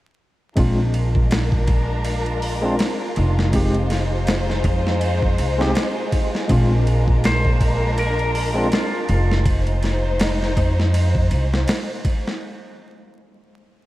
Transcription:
0.56 2.76 A#1 medium
0.56 0.79 G#3 medium
0.56 12.38 G#3 medium
0.56 0.79 C4 medium
0.56 3.50 D4 medium
0.56 0.80 D4 medium
0.56 12.38 F4 medium
0.56 0.81 F4 medium
0.56 3.50 A#4 medium
0.56 kick loud
0.56 ride medium
0.94 ride medium
1.15 kick medium
1.31 snare loud
1.31 ride medium
1.52 kick medium
1.67 kick medium
1.67 ride medium
2.05 ride medium
2.26 ride soft
2.42 open hi-hat medium
2.62 2.73 G#3 medium
2.62 2.74 C4 medium
2.62 2.74 D4 medium
2.62 2.75 F4 medium
2.79 snare loud
2.79 ride medium
3.16 4.62 F1 medium
3.16 ride medium
3.39 snare soft
3.52 3.75 G#3 medium
3.52 3.76 C4 medium
3.52 6.46 D#4 medium
3.52 3.76 D#4 medium
3.52 3.77 G4 medium
3.52 6.46 C5 medium
3.52 kick loud
3.52 ride medium
3.74 ride soft
3.90 snare soft
3.90 ride medium
4.27 snare loud
4.27 ride medium
4.50 snare soft
4.64 5.35 F2 loud
4.64 kick medium
4.64 ride medium
4.87 snare soft
5.01 ride medium
5.22 kick medium
5.38 5.72 C2 medium
5.38 ride medium
5.58 5.69 G#3 loud
5.58 5.70 C4 medium
5.58 5.71 D#4 medium
5.58 5.71 G4 loud
5.58 snare medium
5.75 snare loud
5.75 ride medium
6.12 kick medium
6.12 ride medium
6.35 snare soft
6.48 8.69 A#1 medium
6.48 6.71 G#3 medium
6.48 6.72 C4 medium
6.48 9.42 D4 medium
6.48 6.72 D4 medium
6.48 6.73 F4 medium
6.48 9.43 A#4 medium
6.48 kick loud
6.48 ride medium
6.87 ride medium
7.08 kick medium
7.24 7.99 C5 loud
7.24 snare loud
7.24 ride medium
7.45 kick medium
7.61 kick medium
7.61 ride medium
7.98 8.75 A#4 loud
7.98 ride medium
8.19 ride soft
8.35 open hi-hat medium
8.54 8.66 G#3 medium
8.54 8.66 C4 medium
8.54 8.67 D4 medium
8.54 8.67 F4 loud
8.72 9.43 F4 medium
8.72 snare loud
8.72 ride medium
9.09 10.54 F1 loud
9.09 ride medium
9.31 snare medium
9.46 12.39 D#4 medium
9.46 12.39 C5 medium
9.46 kick loud
9.46 ride medium
9.67 ride soft
9.83 snare soft
9.83 ride medium
10.20 snare loud
10.20 ride medium
10.42 snare soft
10.57 11.28 F2 loud
10.57 kick medium
10.57 ride medium
10.80 snare soft
10.94 ride medium
11.15 kick medium
11.31 11.64 C2 medium
11.31 ride medium
11.54 snare medium
11.68 snare loud
11.68 ride medium
12.05 kick medium
12.05 ride medium
12.27 snare soft

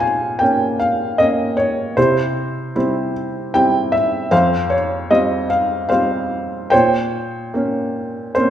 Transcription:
0.00 1.93 A#2 soft
0.00 0.76 C5 soft
0.00 0.77 C#5 soft
0.00 0.80 F5 medium
0.00 0.41 G#5 medium
0.39 1.17 A#3 soft
0.39 1.17 C#4 soft
0.39 0.76 G5 medium
0.80 1.20 F5 medium
1.18 1.95 A#3 soft
1.18 1.96 C#4 soft
1.18 1.55 D#5 medium
1.57 1.98 C#5 medium
1.97 4.28 C3 soft
1.97 2.74 E4 soft
1.97 3.11 G4 soft
1.97 2.72 C5 medium
2.75 3.51 G3 soft
2.75 3.52 C4 soft
2.75 3.52 E4 soft
3.54 4.30 G3 soft
3.54 4.30 C4 soft
3.54 4.30 E4 soft
3.54 3.94 G5 medium
3.92 4.29 E5 medium
4.31 6.68 F2 medium
4.31 5.47 C5 medium
4.31 4.72 F5 medium
4.70 5.12 C#5 medium
5.10 5.88 G3 soft
5.10 5.89 C4 soft
5.10 5.89 F4 soft
5.10 5.48 D#5 medium
5.50 5.87 F5 medium
5.89 6.70 G3 soft
5.89 6.70 C4 soft
5.89 6.70 F4 soft
5.89 6.67 C5 soft
5.89 6.73 F5 medium
6.70 8.50 A#2 soft
6.70 8.32 C5 medium
6.70 8.32 C#5 medium
6.70 8.31 G5 medium
7.54 8.34 A#3 soft
7.54 8.34 C#4 soft
8.35 8.50 A#3 soft
8.35 8.50 C4 soft
8.35 8.50 C#4 soft
8.35 8.50 C5 medium

